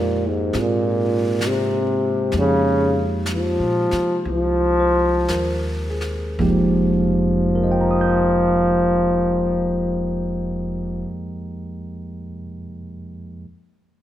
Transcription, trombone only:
Already playing: A#2
0.28 G#2
0.60 A#2
1.48 C3
2.38 C#3
3.33 F3
4.30 F3
6.45 F3

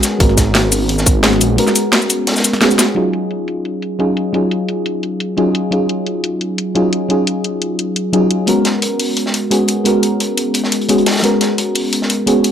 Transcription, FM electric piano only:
Already playing: G#3 B3 C#4 F#4 G#4 A#4
0.19 G#3 B3 C#4 F#4 A#4
1.23 G#3 B3 C#4 F#4 G#4
1.57 G#3 B3 C#4 F#4 A#4
2.61 G#3 B3 C#4 F#4 G#4
2.95 F#3 C#4 D#4 F4 G#4
3.99 F#3 C#4 D#4 F4 G#4
4.33 F#3 C#4 D#4 F4 G#4
5.37 F#3 C#4 D#4 F4 G#4
5.71 F#3 C#4 D#4 F4 G#4
6.75 F#3 C#4 D#4 F4 G#4
7.09 F#3 C#4 D#4 F4 G#4
8.13 F#3 C#4 D#4 F4 G#4
8.46 G#3 B3 C#4 F#4 A#4
9.51 G#3 B3 C#4 F#4 G#4
9.84 G#3 B3 C#4 F#4 A#4
10.89 G#3 B3 C#4 F#4 G#4
11.22 G#3 B3 C#4 F#4 A#4
12.26 G#3 B3 C#4 F#4 G#4

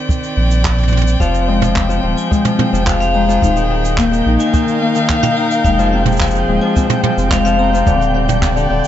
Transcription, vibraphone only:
1.20 F5
2.17 G#5
2.87 F5
3.00 F5
3.14 A#5
3.42 F5
4.40 G#5
5.09 F5
5.23 F5
5.37 A#5
5.65 F5
6.61 G#5
7.31 F5
7.45 F5
7.59 A#5
7.87 F5
8.84 G5

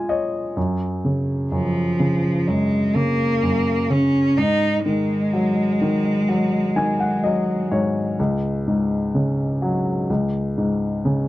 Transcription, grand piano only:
Already playing: C#3 G#3 F4 G#4 G#5
0.09 C#5 D#5
0.57 F#2
1.05 C#3
1.52 F#2
1.99 C#3
2.48 F#2
2.95 C#3
3.43 F#2
3.90 C#3
4.38 G#2
4.86 D#3
5.33 F#3
5.81 D#3
6.29 F#3
6.76 D#3 G#5
7.00 F#5
7.24 F#3 D#5
7.72 G#2 C#5
8.19 C#2
8.67 G#2
9.15 C#3
9.62 F#3
10.10 C#2
10.58 G#2
11.05 C#3

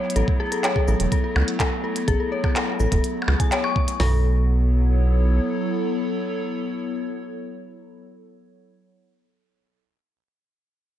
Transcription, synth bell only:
0.16 A4
0.40 G#4
0.52 A4
0.64 C#5
0.76 G#4
0.88 A4
1.12 A4
1.24 A4
1.60 A4
1.84 A4
2.08 G#4
2.20 A4
2.32 C#5
2.44 G#4
2.56 A4
2.80 A4
2.92 A4
3.28 G#4
3.40 G#5
3.52 C#5
3.64 C#6
4.00 A4

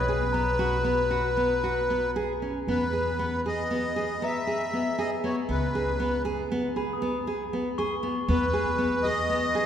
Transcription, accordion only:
Already playing: B4
2.68 B4
3.47 D#5
4.24 E5
4.99 D#5
5.24 C#5
5.51 B4
8.29 B4
9.03 D#5

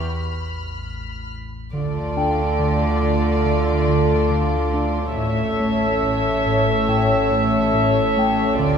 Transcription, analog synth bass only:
1.73 D3
2.17 D4
2.59 D3
3.03 D3
3.46 D3
3.88 D3
4.31 D3
4.74 D4
5.17 A2
5.60 A3
6.03 A2
6.47 A2
6.89 A2
7.31 A2
7.74 A2
8.17 A3
8.60 D3

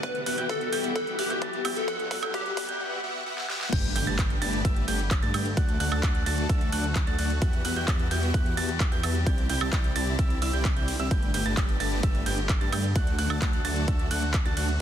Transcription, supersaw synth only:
0.03 B3 F#4 G4 E5 F#5
0.26 B3 F#4 G4 E5 F#5
0.38 B3 F#4 G4 E5 G5
0.50 B3 F#4 G4 E5 A5
0.73 B3 F#4 G4 E5 G5
1.19 B3 F#4 G4 E5 F#5
1.30 B3 F#4 G4 E5 G5
1.42 B3 F#4 G4 A5
1.65 B3 F#4 G4 E5 G5
1.88 B3
2.11 B3 F#4 G4 E5 F#5
2.23 B3 F#4 G4 E5 G5
2.34 B3 F#4 G4 E5 F#5
2.57 B3 F#4 G4 E5
2.69 B3 F#4 G4 E5 G5
2.80 B3 F#4 G4 E5 F#5
3.03 B3 F#4 G4 E5 F#5
3.26 B3 F#4 G4 E5 F#5
3.49 B3 F#4 G4 E5 F#5
3.73 A3 D4 G4
3.96 A3 D4 G4 B4 G5
4.07 A3 D4 G4 B4 A5
4.42 A3 D4 G4 B4 A5
4.65 A3 D4 G4 B4 E5
4.88 A3 D4 G4 B4 G5
5.22 A3 D4 G4 B4 A5
5.34 A3 D4 G4 B4 G5
5.57 A3 D4 F#4 D5 F#5
5.80 A3 D4 F#4 D5 F#5
5.92 A3 D4 F#4 D5 A5
6.03 A3 D4 F#4 D5 F#5
6.26 A3 D4 F#4 D5 A5
6.73 A3 D4 F#4 D5 F#5
7.07 A3 D4 F#4 D5 A5
7.19 A3 D4 F#4 D5 F#5
7.42 B3 F#4 G4 E5 F#5
7.65 B3 F#4 G4 E5 F#5
7.76 B3 F#4 G4 E5 G5
8.11 B3 F#4 G4 E5 G5
8.34 E5
8.57 B3 F#4 G4 E5 A5
8.92 B3 F#4 G4 E5 G5
9.03 B3 F#4 G4 E5 A5
9.27 C4 E4 G4 D5 G5
9.50 C4 E4 G4 D5 G5
9.61 C4 E4 G4 D5 A5
9.73 C4 E4 G4 D5 G5
9.96 C4 E4 G4 D5 A5
10.42 C4 E4 G4 D5 E5
10.53 C4 E4 G4 D5 G5
10.76 C4 E4 G4 D5 G5
10.99 C4 E4 G4 D5 E5
11.11 A3 D4 G4 B4
11.34 A3 D4 G4 B4 G5
11.46 A3 D4 G4 B4 A5
11.80 A3 D4 G4 B4 A5
12.03 A3 D4 G4 B4 E5
12.26 A3 D4 G4 B4 G5
12.61 A3 D4 G4 B4 A5
12.72 A3 D4 G4 B4 G5
12.96 A3 D4 F#4 D5 F#5
13.19 A3 D4 F#4 D5 F#5
13.30 A3 D4 F#4 D5 A5
13.65 A3 D4 F#4 D5 A5
14.11 A3 D4 F#4 D5 F#5
14.46 A3 D4 F#4 D5 A5
14.57 A3 D4 F#4 D5 F#5

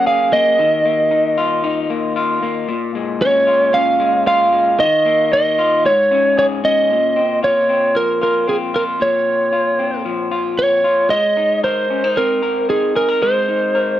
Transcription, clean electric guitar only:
Already playing: F#3 A#3 C#4
0.06 G#4
0.33 A#3
0.59 D#3
0.85 A#3
1.11 D#4
1.38 F4
1.64 D#4
1.90 A#3
2.16 F4
2.43 A#3
2.69 A#2
2.95 G#3
3.21 C#4
3.47 F4
3.73 C#4
4.00 G#3
4.26 F4
4.53 G#3
4.79 D#3
5.05 A#3
5.32 D#4
5.59 F4
5.85 G#2
6.11 C#4
6.37 G#4
6.64 C#4
6.90 A#2
7.16 C4
7.43 F4
7.69 C4
7.95 F3
8.21 F4
8.48 C4
8.74 F4
9.00 A#2
9.52 F4
9.79 C4
10.05 F3
10.31 F4
10.84 F4
11.11 G#3
11.37 D#4
11.63 A#4
11.90 C#4
12.04 D#4
12.17 C4
12.43 A#4
12.69 D#4
12.95 G#4
13.09 A#4
13.22 G#3
13.48 D#4
13.75 A#4

